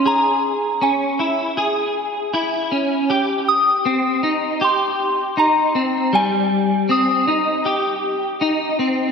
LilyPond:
<<
  \new Staff \with { instrumentName = "Synth bell" } { \time 4/4 \key aes \major \tempo 4 = 79 bes''4 aes''2~ aes''8 r8 | r8 ees'''4 r8 c'''4 bes''4 | aes''4 ees'''2 r4 | }
  \new Staff \with { instrumentName = "Clean electric guitar" } { \time 4/4 \key aes \major aes'4 des'8 fes'8 aes'4 fes'8 des'8 | g'4 c'8 ees'8 g'4 ees'8 c'8 | g4 c'8 ees'8 g'4 ees'8 c'8 | }
>>